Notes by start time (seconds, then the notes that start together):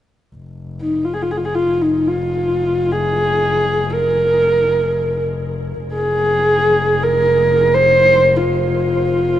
0.36 F1
0.81 D#4
1.05 F4
1.13 G#4
1.22 F4
1.31 G#4
1.37 F4
1.45 G#4
1.55 F4
1.81 D#4
2.08 F4
2.92 G#4
3.93 A#4
5.83 F1
5.93 G#4
7.02 A#4
7.74 C5
8.37 F4